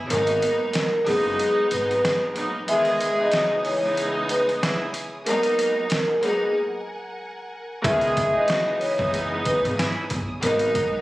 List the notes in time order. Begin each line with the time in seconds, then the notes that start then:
0.09 G#1 G#2 F#3 A#3 B3 D#4 A#4 F#5 G#5 A#5, closed hi-hat
0.27 closed hi-hat
0.42 closed hi-hat
0.73 A#4, snare, closed hi-hat
1.03 G#2 F#3 G#3 B3 D#4 G#4, open hi-hat
1.07 F#1
1.39 closed hi-hat
1.70 G#1 B4, closed hi-hat
1.91 closed hi-hat
2.05 snare, closed hi-hat
2.35 G#2 F#3 A#3 B3 D#4, closed hi-hat
2.65 C#2 D#3 E3 G#3 B3 G#4 C#5 E5 G#5 D#6, closed hi-hat
2.85 closed hi-hat
3.01 closed hi-hat
3.17 C#2 E3 G#3 B3 D#4 D#5
3.32 F#3 F#4, snare, closed hi-hat
3.65 E3 E4 C#5, open hi-hat
3.80 C#2 E3 G#3 B3 D#4
3.97 closed hi-hat
4.29 B4, closed hi-hat
4.49 closed hi-hat
4.62 E3 E4, snare, closed hi-hat
4.94 closed hi-hat
5.25 G#2 F#3 A#3 B3 D#4 A#4 F#5 G#5, closed hi-hat
5.43 closed hi-hat
5.59 closed hi-hat
5.90 A#4, snare, closed hi-hat
6.19 G#2 F#3 A#3 B3 D#4 G#4, closed hi-hat
7.82 C#2 D#3 E3 G#3 B3 G#4 C#5 E5 G#5 D#6, kick, closed hi-hat
8.01 closed hi-hat
8.17 kick, closed hi-hat
8.33 C#2 E3 G#3 B3 D#4 D#5
8.48 F#3 F#4, snare, closed hi-hat
8.80 E3 E4 C#5, open hi-hat
8.97 F#1 C#2 E3 G#3 B3 D#4, kick
9.14 closed hi-hat
9.45 B4, kick, closed hi-hat
9.65 G#1, closed hi-hat
9.78 E3 E4, snare, closed hi-hat
10.10 G1, kick, closed hi-hat
10.41 G#1 G#2 F#3 A#3 B3 D#4 A#4 F#5 G#5 A#5, closed hi-hat
10.59 closed hi-hat
10.75 kick, closed hi-hat